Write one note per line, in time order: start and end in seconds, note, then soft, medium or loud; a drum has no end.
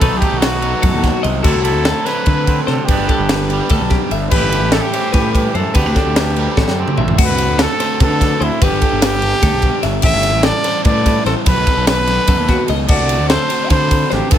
0.00 0.09 B1 medium
0.00 1.01 B2 medium
0.00 0.61 B2 medium
0.00 0.61 D#3 medium
0.00 0.63 F#3 medium
0.00 0.61 F#3 soft
0.00 1.44 A3 medium
0.00 0.62 B3 loud
0.00 0.20 D#4 medium
0.00 0.62 D#4 loud
0.00 0.19 A4 loud
0.00 0.64 A4 loud
0.00 0.22 B4 loud
0.00 kick loud
0.00 ride loud
0.12 0.20 B1 medium
0.18 1.42 D#4 medium
0.18 0.40 G4 medium
0.18 kick medium
0.22 0.42 A4 medium
0.22 ride medium
0.32 0.73 B1 medium
0.38 1.22 F#4 loud
0.38 0.83 B4 medium
0.38 ride loud
0.42 snare loud
0.62 1.43 B2 medium
0.62 1.43 D#3 medium
0.62 1.44 F#3 medium
0.62 1.44 B3 medium
0.62 1.44 D#4 medium
0.62 1.44 A4 medium
0.62 ride medium
0.81 0.92 F#2 medium
0.81 1.03 A2 medium
0.81 1.03 A4 medium
0.81 kick loud
0.81 ride loud
0.94 1.10 D#2 medium
1.02 1.21 B2 medium
1.02 1.24 F#4 medium
1.02 kick medium
1.02 snare soft
1.02 ride medium
1.22 1.41 C2 loud
1.22 1.43 C3 medium
1.22 1.44 D#5 medium
1.22 ride medium
1.41 1.53 D2 medium
1.41 2.67 D3 medium
1.41 2.04 D3 medium
1.41 2.04 F#3 medium
1.41 2.05 A3 medium
1.41 2.46 C4 medium
1.41 2.05 C4 medium
1.41 1.85 F#4 loud
1.41 1.62 A4 medium
1.41 kick loud
1.41 crash loud
1.45 2.92 D4 medium
1.45 1.63 E4 medium
1.45 2.06 F#4 medium
1.45 2.04 A4 loud
1.54 1.75 C2 medium
1.62 2.88 E4 medium
1.62 2.07 A4 loud
1.62 ride medium
1.75 1.91 D2 medium
1.85 2.05 A4 medium
1.85 snare loud
1.85 ride loud
2.05 2.88 D3 medium
2.05 2.85 F#3 medium
2.05 2.87 A3 medium
2.05 2.87 C4 medium
2.05 2.87 F#4 medium
2.05 2.86 A4 medium
2.05 2.62 B4 loud
2.05 2.25 C5 medium
2.05 snare soft
2.05 ride medium
2.25 2.59 D3 medium
2.25 2.67 B4 medium
2.25 kick loud
2.25 ride loud
2.47 2.86 C4 medium
2.47 kick medium
2.47 ride medium
2.62 2.86 A4 medium
2.62 2.66 B4 medium
2.67 2.76 C3 medium
2.67 2.86 D3 medium
2.67 2.87 C5 medium
2.67 snare soft
2.67 ride medium
2.85 2.96 G1 medium
2.85 3.47 G2 medium
2.85 3.48 D3 loud
2.85 3.68 G4 medium
2.85 3.08 B4 loud
2.85 kick loud
2.85 ride loud
2.89 3.71 G2 medium
2.89 3.49 G3 medium
2.89 3.53 G3 medium
2.89 3.49 B3 medium
2.89 4.31 B3 medium
2.89 3.50 D4 loud
2.89 3.10 D4 medium
2.89 3.50 G4 medium
2.98 3.06 G1 medium
3.08 4.35 D4 medium
3.08 3.29 A4 medium
3.08 kick medium
3.08 ride medium
3.19 3.60 G1 medium
3.29 3.70 B4 medium
3.29 snare loud
3.29 ride loud
3.48 4.29 G2 medium
3.48 4.30 D3 medium
3.48 4.32 G3 medium
3.48 4.30 B3 medium
3.48 4.32 D4 medium
3.48 4.33 G4 medium
3.48 ride medium
3.53 4.34 G3 medium
3.69 3.78 D2 medium
3.69 3.92 E2 medium
3.69 3.91 A4 medium
3.69 kick loud
3.69 ride medium
3.80 3.97 B1 medium
3.90 4.11 G4 medium
3.90 kick medium
3.90 snare soft
3.90 ride medium
3.94 4.13 F#2 medium
4.11 4.27 G1 loud
4.11 4.32 E5 medium
4.11 ride medium
4.16 4.33 G2 medium
4.30 4.40 A1 medium
4.30 4.91 A2 medium
4.30 5.73 A2 medium
4.30 4.92 E3 medium
4.30 4.94 G3 medium
4.30 4.92 C#4 medium
4.30 4.92 E4 loud
4.30 4.73 G4 medium
4.30 4.93 A4 loud
4.30 4.74 B4 loud
4.30 kick loud
4.30 crash loud
4.35 4.93 E3 medium
4.35 5.74 E4 medium
4.35 4.54 G4 medium
4.42 4.62 G1 medium
4.52 5.73 G4 medium
4.52 ride medium
4.62 4.79 A1 medium
4.72 4.83 A4 loud
4.72 4.93 A4 medium
4.72 snare loud
4.72 ride loud
4.82 5.13 G4 loud
4.93 5.75 A2 medium
4.93 5.53 E3 medium
4.93 5.74 E3 medium
4.93 5.74 G3 medium
4.93 5.74 C#4 medium
4.93 5.74 E4 medium
4.93 5.76 A4 medium
4.93 5.12 C5 medium
4.93 ride medium
5.12 5.46 A2 medium
5.12 5.33 G4 medium
5.12 5.54 B4 medium
5.12 kick loud
5.12 snare soft
5.12 ride loud
5.33 5.58 G4 medium
5.33 kick medium
5.33 ride medium
5.54 5.63 F#2 medium
5.54 5.72 E3 medium
5.54 5.77 A4 medium
5.54 5.74 C5 medium
5.54 ride medium
5.74 5.83 D2 medium
5.74 6.35 D3 medium
5.74 7.16 D3 medium
5.74 6.35 A3 medium
5.74 5.86 B3 medium
5.74 6.35 C4 medium
5.74 6.36 F#4 loud
5.74 6.98 G4 medium
5.74 6.36 A4 loud
5.74 5.96 B4 loud
5.74 kick loud
5.74 ride loud
5.86 5.93 D2 medium
5.86 5.95 D4 medium
5.96 7.16 D4 medium
5.96 6.16 A4 medium
5.96 kick medium
5.96 snare soft
5.96 ride medium
6.06 6.47 D2 medium
6.16 6.56 B4 medium
6.16 snare loud
6.16 ride loud
6.36 7.17 D3 medium
6.36 7.17 G3 medium
6.36 7.17 A3 medium
6.36 7.17 C4 medium
6.36 7.17 F#4 medium
6.36 7.18 A4 medium
6.36 ride medium
6.57 6.65 A1 medium
6.57 6.78 A4 medium
6.57 kick loud
6.57 snare medium
6.68 6.83 F#2 medium
6.68 snare medium
6.78 7.17 C4 medium
6.78 6.98 G4 medium
6.88 mid tom medium
6.98 7.14 A1 loud
6.98 7.16 A2 medium
6.98 7.18 E5 medium
6.98 mid tom medium
7.08 floor tom medium
7.18 7.26 D2 medium
7.18 7.78 D3 medium
7.18 7.79 A3 medium
7.18 7.79 C4 medium
7.18 7.58 F#4 loud
7.18 7.80 F#4 loud
7.18 7.63 B4 loud
7.18 kick loud
7.18 crash loud
7.29 7.50 C2 loud
7.38 ride medium
7.50 7.65 D2 medium
7.58 7.79 A4 medium
7.58 8.01 A4 loud
7.58 snare loud
7.58 ride loud
7.80 8.61 D3 medium
7.80 8.61 A3 medium
7.80 8.60 C4 medium
7.80 8.60 F#4 medium
7.80 8.01 C5 medium
7.80 snare soft
7.80 ride medium
8.00 8.32 D3 medium
8.00 8.44 A4 loud
8.00 8.40 B4 medium
8.00 kick loud
8.00 ride loud
8.21 kick medium
8.21 snare soft
8.21 ride medium
8.40 8.49 D2 loud
8.40 8.65 E4 loud
8.40 8.61 C5 medium
8.40 ride medium
8.61 8.69 G1 loud
8.61 9.21 G2 loud
8.61 9.21 D3 medium
8.61 9.23 G3 loud
8.61 9.23 B3 loud
8.61 9.24 D4 loud
8.61 9.03 G4 loud
8.61 9.24 G4 loud
8.61 8.81 B4 loud
8.61 kick loud
8.61 ride loud
8.72 8.80 G1 medium
8.81 9.02 A4 medium
8.81 kick medium
8.81 ride medium
8.93 9.32 G1 medium
9.02 9.80 G4 loud
9.02 9.42 B4 medium
9.02 snare loud
9.02 ride loud
9.22 10.02 G2 medium
9.22 10.03 D3 medium
9.22 10.03 G3 medium
9.22 10.04 B3 medium
9.22 10.03 D4 medium
9.22 10.03 G4 medium
9.22 ride medium
9.42 9.50 D2 medium
9.42 9.63 A4 medium
9.42 kick loud
9.42 snare soft
9.42 ride loud
9.53 9.69 B1 medium
9.62 9.83 G4 medium
9.62 kick medium
9.62 ride medium
9.83 9.99 G1 loud
9.83 10.03 E5 medium
9.83 snare soft
9.83 ride medium
10.02 10.11 A1 loud
10.02 10.63 A2 loud
10.02 10.63 E3 loud
10.02 10.64 G3 loud
10.02 10.64 C#4 loud
10.02 10.64 E4 medium
10.02 10.44 G4 loud
10.02 10.64 A4 loud
10.02 10.46 E5 loud
10.02 kick loud
10.02 crash loud
10.13 10.33 G1 loud
10.23 ride medium
10.33 10.50 A1 medium
10.43 10.65 A4 medium
10.43 10.84 D5 loud
10.43 snare loud
10.43 ride loud
10.64 11.46 A2 medium
10.64 11.45 E3 medium
10.64 11.45 G3 medium
10.64 11.45 C#4 medium
10.64 11.45 E4 medium
10.64 11.48 A4 loud
10.64 10.85 C5 medium
10.64 snare soft
10.64 ride medium
10.85 11.18 A2 medium
10.85 11.26 B4 medium
10.85 11.23 D5 loud
10.85 kick loud
10.85 ride loud
11.06 kick medium
11.06 snare soft
11.06 ride medium
11.25 11.33 A1 medium
11.25 11.35 A4 medium
11.25 11.47 C5 medium
11.25 snare soft
11.25 ride medium
11.46 11.54 B1 medium
11.46 12.06 B2 medium
11.46 12.06 D#3 medium
11.46 12.08 F#3 loud
11.46 12.07 B3 loud
11.46 12.07 D#4 loud
11.46 12.09 A4 loud
11.46 11.84 B4 loud
11.46 11.67 B4 loud
11.46 kick loud
11.46 ride loud
11.56 11.64 B1 medium
11.67 11.88 A4 medium
11.67 kick medium
11.67 ride medium
11.77 12.17 B1 medium
11.87 12.28 B4 medium
11.87 12.65 B4 loud
11.87 snare loud
11.87 ride loud
12.07 12.88 B2 medium
12.07 12.87 D#3 medium
12.07 12.88 F#3 medium
12.07 12.89 B3 medium
12.07 12.89 D#4 medium
12.07 12.89 A4 medium
12.07 snare soft
12.07 ride medium
12.27 12.36 F#2 medium
12.27 12.49 A4 medium
12.27 kick loud
12.27 ride loud
12.38 12.54 D#2 medium
12.48 12.69 F#4 medium
12.48 kick medium
12.48 snare soft
12.48 ride medium
12.68 12.85 C#2 loud
12.68 12.89 D#5 medium
12.68 ride medium
12.88 12.97 D2 loud
12.88 13.48 D3 medium
12.88 13.49 A3 loud
12.88 13.49 C4 loud
12.88 13.30 F#4 loud
12.88 13.50 F#4 loud
12.88 13.49 A4 loud
12.88 13.26 D5 loud
12.88 kick loud
12.88 crash loud
12.99 13.19 C2 medium
13.09 ride medium
13.19 13.36 D2 medium
13.29 13.49 A4 medium
13.29 13.67 C5 loud
13.29 snare loud
13.29 ride loud
13.49 14.31 D3 medium
13.49 14.32 A3 medium
13.49 14.31 C4 medium
13.49 14.31 F#4 loud
13.49 14.31 A4 medium
13.49 13.71 C5 medium
13.49 ride medium
13.70 14.03 D3 medium
13.70 14.15 C5 loud
13.70 14.11 B5 medium
13.70 kick loud
13.70 ride loud
13.91 kick medium
13.91 ride medium
14.11 14.20 A1 loud
14.11 14.33 G4 medium
14.11 14.30 C5 medium
14.11 snare soft
14.11 ride medium
14.30 14.38 G1 medium
14.30 14.38 G2 medium
14.30 14.38 D3 medium
14.30 14.38 G3 medium
14.30 14.38 B3 medium
14.30 14.38 A4 medium
14.30 14.38 B4 medium
14.30 kick loud
14.30 ride loud
14.34 14.38 D4 loud